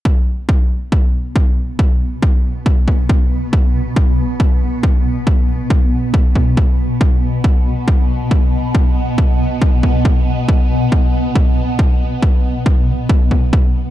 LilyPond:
<<
  \new Staff \with { instrumentName = "Synth drone" } { \clef bass \time 4/4 \key c \lydian \tempo 4 = 138 <b, b>1~ | <b, b>1~ | <b, b>1~ | <b, b>1~ |
<b, b>1~ | <b, b>1~ | <b, b>1~ | <b, b>1 | }
  \new DrumStaff \with { instrumentName = "Drums" } \drummode { \time 4/4 bd4 bd4 bd4 bd4 | bd4 bd4 bd8 bd8 bd4 | bd4 bd4 bd4 bd4 | bd4 bd4 bd8 bd8 bd4 |
bd4 bd4 bd4 bd4 | bd4 bd4 bd8 bd8 bd4 | bd4 bd4 bd4 bd4 | bd4 bd4 bd8 bd8 bd4 | }
>>